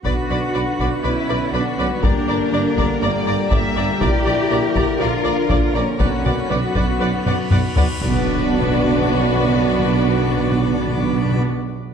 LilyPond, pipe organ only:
\new Staff \with { instrumentName = "Pipe organ" } { \time 4/4 \key b \minor \tempo 4 = 121 << { <b b'>1 | bes'1~ | bes'1 | <fis'' b''>1 |
<d' b' d''>1~ | <d' b' d''>1 | } \\ { fis'1 | g'1 | eis1 | fis'1 |
fis'1~ | fis'1 | } >> }